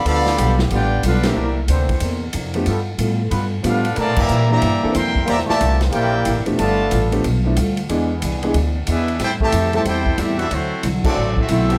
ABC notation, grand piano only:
X:1
M:4/4
L:1/8
Q:"Swing" 1/4=184
K:G
V:1 name="Grand piano"
z6 z [E,_B,CDG] | z6 z [=F,A,B,DG] | z6 [=F,A,B,DG] z | z3 [E,_B,CDG] z [E,B,CDA] z2 |
z6 z [=F,A,B,DG] | z3 [=F,A,B,DG] z [F,A,B,DE] z2 | [E,^G,B,D^G] z2 [E,G,B,DG] z4 | z3 [G,A,CEA] z4 |
z3 [F,CDEA] z4 |]